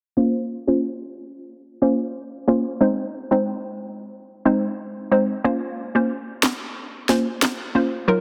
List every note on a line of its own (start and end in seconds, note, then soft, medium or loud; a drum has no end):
0.17 0.63 A#3 medium
0.17 0.63 C#4 medium
0.17 0.63 F4 medium
0.17 0.63 C5 loud
0.67 0.88 A#3 medium
0.67 0.88 C#4 medium
0.67 0.88 F4 medium
0.67 0.88 C5 medium
1.82 2.03 A#3 medium
1.82 2.04 C#4 medium
1.82 2.04 F4 medium
1.82 2.04 C5 medium
2.48 2.69 A#3 medium
2.48 2.70 C#4 medium
2.48 2.70 F4 medium
2.48 2.70 C5 medium
2.81 3.27 G#3 medium
2.81 3.27 C4 medium
2.81 3.27 D#4 medium
2.81 3.27 C5 loud
3.31 3.51 G#3 medium
3.31 3.52 C4 medium
3.31 3.52 D#4 medium
3.31 3.52 C5 medium
4.45 4.67 G#3 medium
4.45 4.67 C4 medium
4.45 4.67 D#4 medium
4.45 4.67 C5 medium
5.11 5.33 G#3 medium
5.11 5.33 C4 medium
5.11 5.33 D#4 medium
5.11 5.33 C5 medium
5.44 5.91 A#3 medium
5.44 5.91 C#4 medium
5.44 5.91 F4 medium
5.44 5.91 C5 loud
5.95 6.15 A#3 medium
5.95 6.15 C#4 medium
5.95 6.15 F4 medium
5.95 6.16 C5 medium
6.43 snare loud
6.43 clap loud
7.09 7.31 A#3 medium
7.09 7.31 C#4 medium
7.09 7.31 F4 medium
7.09 7.31 C5 medium
7.09 snare medium
7.42 snare loud
7.42 clap medium
7.75 7.97 A#3 medium
7.75 7.97 C#4 medium
7.75 7.97 F4 medium
7.75 7.97 C5 medium
8.08 8.21 F#3 medium
8.08 8.21 D#4 medium
8.08 8.21 F4 medium
8.08 8.21 A#4 loud